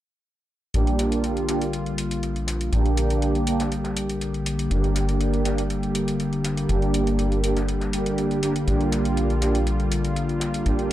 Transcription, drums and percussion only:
0.74 closed hi-hat, ride
0.87 closed hi-hat
0.99 snare, closed hi-hat, ride
1.12 closed hi-hat
1.24 closed hi-hat, ride
1.37 closed hi-hat
1.48 snare, closed hi-hat, ride
1.61 closed hi-hat, ride
1.73 closed hi-hat, ride
1.86 closed hi-hat, ride
1.98 closed hi-hat, ride
2.11 closed hi-hat
2.23 closed hi-hat, ride
2.36 closed hi-hat, ride
2.47 snare, closed hi-hat, ride
2.61 closed hi-hat
2.72 closed hi-hat, ride
2.85 closed hi-hat, ride
2.97 closed hi-hat, ride
3.10 closed hi-hat
3.22 closed hi-hat, ride
3.35 closed hi-hat
3.47 closed hi-hat, ride
3.60 snare, closed hi-hat
3.72 closed hi-hat, ride
3.84 snare, closed hi-hat
3.97 closed hi-hat, ride
4.09 closed hi-hat
4.21 closed hi-hat, ride
4.34 closed hi-hat
4.46 closed hi-hat, ride
4.59 closed hi-hat
4.71 closed hi-hat, ride
4.84 closed hi-hat
4.95 snare, closed hi-hat, ride
5.09 closed hi-hat
5.20 closed hi-hat, ride
5.34 closed hi-hat
5.44 snare, closed hi-hat, ride
5.58 closed hi-hat, ride
5.70 closed hi-hat, ride
5.82 closed hi-hat, ride
5.95 closed hi-hat, ride
6.08 closed hi-hat
6.20 closed hi-hat, ride
6.33 closed hi-hat, ride
6.44 snare, closed hi-hat, ride
6.57 closed hi-hat
6.69 closed hi-hat, ride
6.82 closed hi-hat, ride
6.94 closed hi-hat, ride
7.07 closed hi-hat
7.18 closed hi-hat, ride
7.32 closed hi-hat
7.43 closed hi-hat, ride
7.57 snare, closed hi-hat
7.68 closed hi-hat, ride
7.81 snare, closed hi-hat
7.93 closed hi-hat, ride
8.06 closed hi-hat
8.18 closed hi-hat, ride
8.31 closed hi-hat
8.43 closed hi-hat, ride
8.56 closed hi-hat
8.68 closed hi-hat, ride
8.81 closed hi-hat
8.92 snare, closed hi-hat, ride
9.05 closed hi-hat
9.16 closed hi-hat, ride
9.30 closed hi-hat
9.41 snare, closed hi-hat, ride
9.55 closed hi-hat, ride
9.66 closed hi-hat, ride
9.79 closed hi-hat, ride
9.92 closed hi-hat, ride
10.05 closed hi-hat
10.16 closed hi-hat, ride
10.29 closed hi-hat, ride
10.40 snare, closed hi-hat, ride
10.54 closed hi-hat
10.66 closed hi-hat, ride
10.79 closed hi-hat, ride

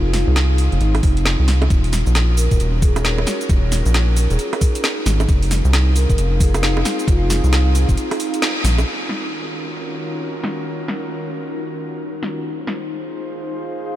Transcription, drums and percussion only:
0.14 snare, open hi-hat
0.36 snare, closed hi-hat
0.58 open hi-hat
0.72 closed hi-hat
0.81 closed hi-hat
0.95 open hi-hat, high bongo
1.03 kick, open hi-hat
1.17 closed hi-hat
1.25 snare, closed hi-hat
1.48 snare, open hi-hat
1.62 closed hi-hat, high bongo
1.70 kick, closed hi-hat, cabasa
1.84 open hi-hat
1.93 snare, open hi-hat, cabasa
2.07 cabasa
2.15 snare, closed hi-hat, cabasa
2.37 open hi-hat, cabasa
2.51 kick, closed hi-hat, cabasa
2.60 closed hi-hat, cabasa
2.82 kick, open hi-hat, cabasa
2.96 closed hi-hat, high bongo, cabasa
3.05 snare, closed hi-hat, cabasa
3.18 high bongo
3.27 snare, open hi-hat, cabasa
3.41 closed hi-hat, cabasa
3.49 kick, closed hi-hat, cabasa
3.72 snare, open hi-hat, cabasa
3.86 cabasa
3.94 snare, closed hi-hat, cabasa
4.17 open hi-hat, cabasa
4.31 closed hi-hat, cabasa
4.39 closed hi-hat, cabasa
4.53 open hi-hat, high bongo
4.61 kick, open hi-hat, cabasa
4.75 closed hi-hat, cabasa
4.84 snare, closed hi-hat, cabasa
5.06 snare, open hi-hat, cabasa
5.20 closed hi-hat, high bongo, cabasa
5.29 kick, closed hi-hat, cabasa
5.42 open hi-hat
5.51 snare, open hi-hat, cabasa
5.65 cabasa
5.73 snare, closed hi-hat, cabasa
5.96 open hi-hat, cabasa
6.10 kick, closed hi-hat, cabasa
6.18 closed hi-hat, cabasa
6.40 kick, open hi-hat, cabasa
6.54 closed hi-hat, high bongo, cabasa
6.63 snare, closed hi-hat, cabasa
6.77 high bongo
6.85 snare, open hi-hat, cabasa
6.99 closed hi-hat, cabasa
7.08 kick, closed hi-hat, cabasa
7.30 snare, open hi-hat, cabasa
7.44 cabasa
7.53 snare, closed hi-hat, cabasa
7.75 open hi-hat, cabasa
7.89 kick, closed hi-hat, cabasa
7.97 closed hi-hat, cabasa
8.11 open hi-hat, high bongo
8.20 open hi-hat, cabasa
8.34 closed hi-hat, cabasa
8.42 snare, closed hi-hat, cabasa
8.65 snare, open hi-hat, cabasa
8.79 closed hi-hat, high bongo, cabasa
8.87 crash
9.09 snare
10.44 snare
10.88 snare
12.23 snare
12.67 snare

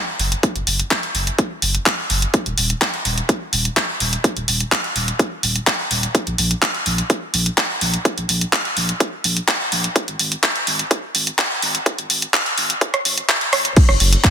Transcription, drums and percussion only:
0.19 open hi-hat
0.32 closed hi-hat
0.43 kick, closed hi-hat
0.56 closed hi-hat
0.67 open hi-hat
0.80 closed hi-hat
0.91 kick, clap, closed hi-hat
1.03 closed hi-hat
1.15 open hi-hat
1.27 closed hi-hat
1.39 kick, closed hi-hat
1.62 open hi-hat
1.75 closed hi-hat
1.86 kick, clap, closed hi-hat
2.10 open hi-hat
2.22 closed hi-hat
2.34 kick, closed hi-hat
2.46 closed hi-hat
2.58 open hi-hat
2.70 closed hi-hat
2.81 kick, clap, closed hi-hat
2.94 closed hi-hat
3.05 open hi-hat
3.18 closed hi-hat
3.29 kick, closed hi-hat
3.53 open hi-hat
3.65 closed hi-hat
3.77 kick, clap, closed hi-hat
4.00 open hi-hat
4.13 closed hi-hat
4.24 kick, closed hi-hat
4.37 closed hi-hat
4.48 open hi-hat
4.60 closed hi-hat
4.72 kick, clap, closed hi-hat
4.84 closed hi-hat
4.96 open hi-hat
5.08 closed hi-hat
5.19 kick, closed hi-hat
5.43 open hi-hat
5.56 closed hi-hat
5.67 kick, clap, closed hi-hat
5.91 open hi-hat
6.03 closed hi-hat
6.15 kick, closed hi-hat
6.27 closed hi-hat
6.38 open hi-hat
6.51 closed hi-hat
6.62 kick, clap, closed hi-hat
6.74 closed hi-hat
6.86 open hi-hat
6.98 closed hi-hat
7.10 kick, closed hi-hat
7.34 open hi-hat
7.46 closed hi-hat
7.57 kick, clap, closed hi-hat
7.81 open hi-hat
7.94 closed hi-hat
8.05 kick, closed hi-hat
8.18 closed hi-hat
8.29 open hi-hat
8.41 closed hi-hat
8.53 kick, clap, closed hi-hat
8.65 closed hi-hat
8.77 open hi-hat
8.89 closed hi-hat
9.00 kick, closed hi-hat
9.24 open hi-hat
9.37 closed hi-hat
9.48 kick, clap, closed hi-hat
9.72 open hi-hat
9.84 closed hi-hat
9.96 kick, closed hi-hat
10.08 closed hi-hat
10.19 open hi-hat
10.32 closed hi-hat
10.43 kick, clap, closed hi-hat
10.56 closed hi-hat
10.67 open hi-hat
10.79 closed hi-hat
10.91 kick, closed hi-hat
11.15 open hi-hat
11.27 closed hi-hat
11.38 kick, clap, closed hi-hat
11.62 open hi-hat
11.75 closed hi-hat
11.86 kick, closed hi-hat
11.98 closed hi-hat
12.10 open hi-hat
12.22 closed hi-hat
12.34 kick, clap, closed hi-hat
12.46 closed hi-hat
12.58 open hi-hat
12.70 closed hi-hat
12.81 kick, closed hi-hat
12.94 cross-stick, closed hi-hat
13.05 open hi-hat
13.18 closed hi-hat
13.29 kick, clap, closed hi-hat
13.41 closed hi-hat
13.53 cross-stick, open hi-hat
13.65 closed hi-hat
13.77 kick, closed hi-hat, crash, ride
13.89 cross-stick
14.00 open hi-hat, ride
14.13 closed hi-hat
14.24 kick, clap, closed hi-hat

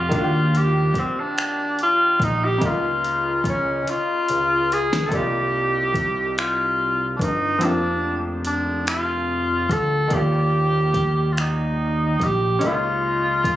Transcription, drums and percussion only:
0.11 kick, closed hi-hat
0.55 closed hi-hat
0.94 kick, closed hi-hat
1.38 finger snap, closed hi-hat
1.79 closed hi-hat
2.20 kick, closed hi-hat
2.61 kick, closed hi-hat
3.04 closed hi-hat
3.44 kick, closed hi-hat
3.87 closed hi-hat
4.29 closed hi-hat
4.72 closed hi-hat
4.93 snare
5.11 kick, closed hi-hat
5.94 kick, closed hi-hat
6.38 finger snap, closed hi-hat
7.19 kick, closed hi-hat
7.61 closed hi-hat
8.45 closed hi-hat
8.87 finger snap, closed hi-hat
9.69 kick, closed hi-hat
10.10 kick, closed hi-hat
10.94 kick, closed hi-hat
11.37 finger snap, closed hi-hat
12.20 kick, closed hi-hat
12.61 closed hi-hat
13.44 kick, closed hi-hat

